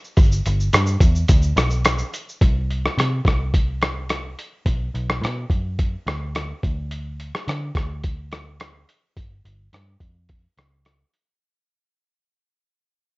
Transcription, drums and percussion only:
0.05 shaker
0.17 kick, closed hi-hat, shaker
0.32 shaker
0.46 closed hi-hat, shaker
0.60 shaker
0.73 cross-stick, closed hi-hat, shaker
0.86 shaker
1.00 kick, closed hi-hat, shaker
1.15 shaker
1.28 kick, closed hi-hat, shaker
1.42 shaker
1.57 cross-stick, closed hi-hat, shaker
1.70 shaker
1.85 cross-stick, closed hi-hat, shaker
1.98 shaker
2.14 closed hi-hat, shaker
2.29 shaker
2.41 kick, closed hi-hat
2.71 closed hi-hat
2.86 cross-stick
2.99 cross-stick, closed hi-hat
3.25 kick, cross-stick, closed hi-hat
3.54 kick, closed hi-hat
3.82 cross-stick, closed hi-hat
4.10 cross-stick, closed hi-hat
4.39 closed hi-hat
4.66 kick, closed hi-hat
4.95 closed hi-hat
5.10 cross-stick
5.24 cross-stick, closed hi-hat
5.50 kick, closed hi-hat
5.79 kick, closed hi-hat
6.07 cross-stick, closed hi-hat
6.35 cross-stick, closed hi-hat
6.63 kick, closed hi-hat
6.91 closed hi-hat
7.20 closed hi-hat
7.35 cross-stick
7.48 cross-stick, closed hi-hat
7.75 kick, cross-stick, closed hi-hat
8.04 kick, closed hi-hat
8.32 cross-stick, closed hi-hat
8.60 cross-stick, closed hi-hat
8.89 closed hi-hat
9.17 kick, closed hi-hat
9.45 closed hi-hat
9.73 cross-stick, closed hi-hat
10.00 kick, closed hi-hat
10.29 kick, closed hi-hat
10.58 cross-stick, closed hi-hat
10.85 cross-stick, closed hi-hat
11.13 closed hi-hat

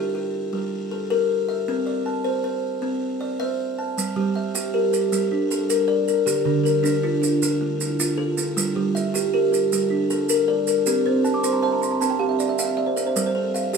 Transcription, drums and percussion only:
3.98 maracas
4.55 maracas
4.93 maracas
5.13 maracas
5.51 maracas
5.70 maracas
6.08 maracas
6.27 maracas
6.66 maracas
6.85 maracas
7.23 maracas
7.42 maracas
7.81 maracas
8.00 maracas
8.38 maracas
8.58 maracas
8.96 maracas
9.15 maracas
9.54 maracas
9.73 maracas
10.10 maracas
10.29 maracas
10.67 maracas
10.86 maracas
11.25 maracas
11.44 maracas
11.83 maracas
12.02 maracas
12.40 maracas
12.59 maracas
12.97 maracas
13.16 maracas
13.55 maracas
13.74 maracas

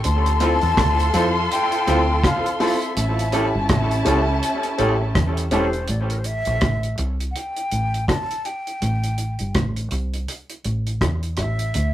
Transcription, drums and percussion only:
0.04 closed hi-hat
0.26 closed hi-hat
0.40 closed hi-hat
0.61 closed hi-hat
0.77 kick, cross-stick, closed hi-hat, high bongo
1.00 closed hi-hat
1.14 closed hi-hat, high bongo
1.52 closed hi-hat
1.72 closed hi-hat
1.87 closed hi-hat
2.24 kick, cross-stick, closed hi-hat
2.46 closed hi-hat
2.60 open hi-hat, high bongo, low bongo
2.82 closed hi-hat
2.97 closed hi-hat
3.19 closed hi-hat
3.32 closed hi-hat
3.69 kick, cross-stick, closed hi-hat, high bongo
3.91 closed hi-hat
4.05 closed hi-hat, high bongo
4.43 closed hi-hat
4.63 closed hi-hat
4.79 closed hi-hat
5.15 kick, cross-stick, closed hi-hat
5.37 closed hi-hat
5.51 closed hi-hat, high bongo, low bongo
5.73 closed hi-hat
5.88 closed hi-hat
6.10 closed hi-hat
6.24 closed hi-hat
6.45 closed hi-hat
6.61 kick, cross-stick, closed hi-hat
6.83 closed hi-hat
6.98 closed hi-hat
7.20 closed hi-hat
7.36 closed hi-hat
7.56 closed hi-hat
7.71 closed hi-hat
7.94 closed hi-hat
8.08 kick, cross-stick, closed hi-hat
8.31 closed hi-hat
8.45 closed hi-hat
8.67 closed hi-hat
8.82 closed hi-hat
9.04 closed hi-hat
9.18 closed hi-hat
9.39 closed hi-hat
9.55 kick, cross-stick, closed hi-hat
9.76 closed hi-hat
9.91 closed hi-hat
10.14 closed hi-hat
10.28 closed hi-hat
10.50 closed hi-hat
10.65 closed hi-hat
10.87 closed hi-hat
11.01 kick, cross-stick, closed hi-hat
11.23 closed hi-hat
11.37 cross-stick, closed hi-hat
11.59 closed hi-hat
11.74 closed hi-hat

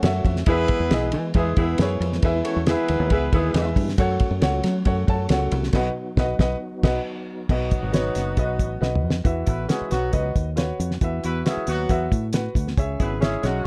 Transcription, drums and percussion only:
0.03 snare, ride
0.25 kick, ride
0.36 snare
0.46 kick, ride
0.68 kick, ride
0.91 snare, ride
1.12 ride
1.34 kick, ride
1.57 kick, ride
1.78 snare, ride
2.02 ride
2.13 snare
2.22 kick, ride
2.45 ride
2.66 snare, ride
2.88 ride
3.10 kick, ride
3.33 kick, ride
3.54 snare, ride
3.76 kick, open hi-hat, ride
3.89 snare
3.98 kick, hi-hat pedal, ride
4.20 kick, ride
4.42 snare, ride
4.63 snare, ride
4.85 kick, ride
5.08 kick, ride
5.29 snare, ride
5.52 ride
5.63 snare
5.73 kick, snare, crash
6.17 kick, snare
6.39 kick, snare
6.83 kick, snare, crash
7.49 kick, crash
7.71 kick, closed hi-hat
7.94 snare, closed hi-hat
8.15 snare, closed hi-hat
8.37 kick, closed hi-hat
8.59 kick, closed hi-hat
8.82 snare
8.95 mid tom
9.10 snare
9.25 kick, closed hi-hat
9.47 kick, closed hi-hat
9.69 snare, closed hi-hat
9.91 snare, closed hi-hat
10.13 kick, closed hi-hat
10.36 kick, closed hi-hat
10.57 snare, closed hi-hat
10.80 closed hi-hat
10.91 snare
11.01 kick, closed hi-hat
11.24 closed hi-hat
11.46 snare, closed hi-hat
11.67 closed hi-hat
11.89 kick, closed hi-hat
12.12 kick, closed hi-hat
12.33 snare, closed hi-hat
12.55 kick, closed hi-hat
12.67 snare
12.78 kick, closed hi-hat
13.00 kick, closed hi-hat
13.22 snare, closed hi-hat
13.43 snare, closed hi-hat

